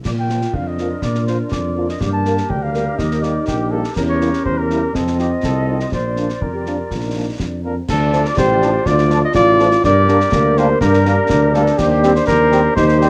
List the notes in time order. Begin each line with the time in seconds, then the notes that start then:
0.05 A#2 F4 A#4 D5, concert bass drum, snare, crash
0.19 G5
0.29 F3 A#3 F4, snare
0.41 snare
0.53 F2 D4 F5, concert bass drum
0.67 D#5
0.78 F3 A#3 F4, snare
1.02 A#2 D5, concert bass drum, snare
1.15 snare
1.27 F3 A#3 F4 C5, snare
1.51 F2 D5, concert bass drum, snare
1.77 F3 A#3 F4
1.89 D#5, snare
2.01 G2 A#3 G4 A#4 D5, concert bass drum, snare
2.12 A5
2.25 G3 A#3 A#4, snare
2.37 snare
2.49 D2 D4 G5, concert bass drum
2.63 F5
2.74 G3 A#3 A#4, snare
2.98 D#2 D#4 D#5, concert bass drum, snare
3.11 snare
3.23 G3 A#3 G4 D5, snare
3.47 A#1 G4, concert bass drum, snare
3.71 G3 A#3 G4 A4
3.84 snare
3.96 E2 C#4 G4 A#4, concert bass drum, snare, crash
4.09 C#5
4.21 G3 A#3 E4, snare
4.34 snare
4.45 E2 C5, concert bass drum
4.58 A#4
4.70 G3 A#3 E4, snare
4.94 F2 C4 F4 A4 D#5, concert bass drum, snare
5.07 snare
5.19 F3 C4 D#4 G4, snare
5.43 C2 A4, concert bass drum, snare
5.68 F3 C4 D#4
5.80 C5, snare
5.92 A#1 D4 F4 C5 D5, concert bass drum, snare
6.16 F3 A#3 D4, snare
6.29 snare
6.41 F2 D4 A#4, concert bass drum
6.54 G4
6.66 F3 A#3 D4, snare
6.90 A#1 F4, concert bass drum, snare
7.04 D#4
7.16 F3 A#3 D4
7.39 F2 D4, concert bass drum, snare
7.63 F3 A#3 C4 D4 A#4
7.89 D2 F4 A4 D5, concert bass drum, snare, crash
8.13 F3 A3 D4, snare
8.25 D5, snare
8.37 A1 G4 C5, concert bass drum, snare
8.62 F3 A3 D4, snare
8.86 D2 F4 D5, concert bass drum, snare
8.98 snare
9.10 F3 A3 D4, snare
9.25 D#5
9.35 A1 F4 D5, concert bass drum, snare
9.59 F3 A3 D4, snare
9.71 snare
9.84 G2 D4 G4 A#4 D5, concert bass drum, snare
10.08 G3 A#3 D4, snare
10.20 snare
10.32 D2 A#3, concert bass drum, snare
10.57 G3 A#3 D4 C5, snare
10.81 G2 D4 G4 A#4, concert bass drum, snare
10.93 snare
11.05 G3 A#3 D4, snare
11.29 D2, concert bass drum, snare
11.54 G3 A#3 D4 A4, snare
11.66 snare
11.78 D#2 G4 C5, concert bass drum, snare, crash
12.03 G3 C4 G4, snare
12.15 C5, snare
12.27 D#2 G4 A#4 C5, concert bass drum, snare
12.51 G3 C4 G4, snare
12.75 D#2 D#4 G4 C5, concert bass drum, snare
12.89 snare
13.00 G3 C4 G4, snare